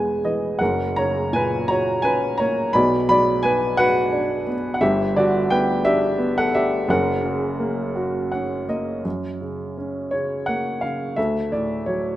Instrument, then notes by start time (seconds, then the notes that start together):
upright piano
Already playing: E1 E2 B2 E3 G#3 B3 B4 G#5
0.25 E3 D#5
0.59 F#1 F#2 A#4 F#5
0.96 C#3 C#5 A#5
1.33 A#2 B4 G#5
1.68 F#4 C#5 A#5
2.02 C#4 B4 G#5
2.38 A#3 C#5 A#5
2.73 B1 B2 D5 B5
3.09 F#3 D5 B5
3.43 B3 B4 G#5
3.77 F#4 B4 F#5
4.12 D4
4.47 B3
4.74 F#5
4.81 G1 G2 G4 E5
5.16 D3 F#4 D5
5.50 B3 B4 G5
5.85 D4 G4 E5
6.18 B3
6.38 A4 F#5
6.53 D4 G4 E5
6.88 F#1 F#2 A#4 F#5
7.24 C#3
7.59 A#3
7.96 F#4
8.32 C#4 F#5
8.69 A#3 D#5
9.05 F#2
9.41 C#3
9.77 C#4
10.11 C#3 C#5
10.46 A#3 F#5
10.81 C#3 F5
11.16 D2 A4 E5
11.52 A2 D5
11.86 F#3 C#5